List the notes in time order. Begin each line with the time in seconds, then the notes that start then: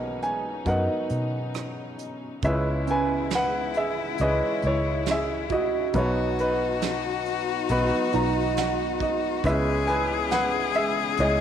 Already playing: B1 B2 F#3 A#3 B3 C#4 D#4 G#4 D#5 F#5 A#5 B5
0.22 G#5, closed hi-hat
0.65 F#2 F#3 B3 D#4 A#4 F#5, kick, closed hi-hat
0.70 A#4 D#5
1.09 B2, closed hi-hat
1.54 cross-stick, closed hi-hat
1.99 closed hi-hat
2.42 C#2 C#3 G#3 B3 C#4 E4 G#4 B4 E5, kick, closed hi-hat
2.87 C#4 B4 G#5, closed hi-hat
3.30 snare, closed hi-hat
3.35 B4 F#5
3.74 E5, closed hi-hat
3.78 G#4
4.18 C#2 G#3 C#4 E4 D#5, closed hi-hat
4.22 G#4 B4
4.62 C#2, closed hi-hat
4.67 E4 C#5
5.06 snare, closed hi-hat
5.11 G#4 E5
5.49 F#4 D#5, kick, closed hi-hat
5.54 F#4
5.93 B1 B2 F#3 B3 D#4 F#4 B4, kick, closed hi-hat
5.97 F#4 C#5
6.39 D#4 B4, closed hi-hat
6.81 snare, closed hi-hat
7.26 closed hi-hat
7.69 B1 F#3 B3 D#4 B4, closed hi-hat
8.12 B1 D#4 A#5, closed hi-hat
8.57 F#5, snare, closed hi-hat
9.00 D#5, kick, closed hi-hat
9.44 C#2 C#3 G#3 C#4 E4 G#4 B4 E5, kick, closed hi-hat
9.49 G#4
9.87 B4 G#5, closed hi-hat
10.31 B4 F#5, snare, closed hi-hat
10.74 E5, closed hi-hat
10.78 G#4
11.17 C#2 G#3 C#4 E4 C#5, closed hi-hat
11.21 G#4 D#5